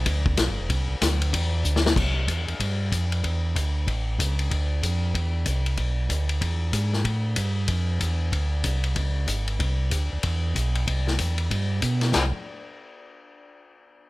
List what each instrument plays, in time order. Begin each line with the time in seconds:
0.06 tonewheel organ D2, kick, ride
0.26 kick
0.37 tonewheel organ B1, kick, snare, hi-hat pedal, ride
0.48 tonewheel organ G1
0.59 tonewheel organ E1
0.70 tonewheel organ C2, kick, ride
0.89 tonewheel organ C2
1.02 tonewheel organ D2, kick, snare, hi-hat pedal, ride
1.22 ride
1.33 tonewheel organ E2, kick, ride
1.65 tonewheel organ D2, hi-hat pedal
1.76 snare
1.86 snare
1.96 tonewheel organ C2, kick, crash
2.28 tonewheel organ E2, kick, hi-hat pedal, ride
2.48 tonewheel organ E2, ride
2.60 tonewheel organ G2, kick, ride
2.92 tonewheel organ F2, kick, hi-hat pedal, ride
3.12 ride
3.24 tonewheel organ E2, kick, ride
3.56 tonewheel organ D2, kick, hi-hat pedal, ride
3.87 tonewheel organ A1, kick, ride
4.19 tonewheel organ C#2, kick, hi-hat pedal, ride
4.39 ride
4.51 tonewheel organ D2, kick, ride
4.83 tonewheel organ F2, kick, hi-hat pedal, ride
5.15 tonewheel organ E2, kick, ride
5.46 tonewheel organ C2, kick, hi-hat pedal, ride
5.66 ride
5.77 tonewheel organ B1, kick, ride
6.10 tonewheel organ D2, kick, hi-hat pedal, ride
6.29 ride
6.41 tonewheel organ E2, kick, ride
6.73 tonewheel organ G#2, kick, hi-hat pedal, ride
6.93 snare
7.05 tonewheel organ A2, kick, ride
7.36 tonewheel organ G2, kick, hi-hat pedal, ride
7.68 tonewheel organ F2, kick, ride
8.00 tonewheel organ E2, kick, hi-hat pedal, ride
8.32 tonewheel organ D2, kick, ride
8.64 tonewheel organ C2, kick, hi-hat pedal, ride
8.84 ride
8.96 tonewheel organ C#2, kick, ride
9.28 tonewheel organ G#1, kick, hi-hat pedal, ride
9.48 ride
9.60 tonewheel organ C2, kick, ride
9.91 tonewheel organ D2, kick, hi-hat pedal, ride
10.13 tonewheel organ D2
10.23 tonewheel organ E2, kick, ride
10.55 tonewheel organ B1, kick, hi-hat pedal, ride
10.75 ride
10.87 tonewheel organ C2, kick, ride
11.07 snare
11.19 tonewheel organ E2, kick, hi-hat pedal, ride
11.38 ride
11.50 tonewheel organ G2, kick, ride
11.82 tonewheel organ B2, kick, hi-hat pedal, ride
12.01 snare, ride
12.14 tonewheel organ C2, snare, china